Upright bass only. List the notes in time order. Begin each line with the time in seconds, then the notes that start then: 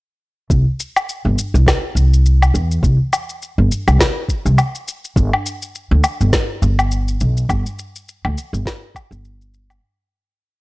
0.50 C2
1.25 G1
1.54 C2
1.95 C2
2.54 E2
2.83 C2
3.58 G1
3.88 C2
4.45 C2
5.16 G1
5.91 D2
6.21 G1
6.62 G1
7.21 B1
7.49 G1
8.25 D2
8.53 G1
9.11 G1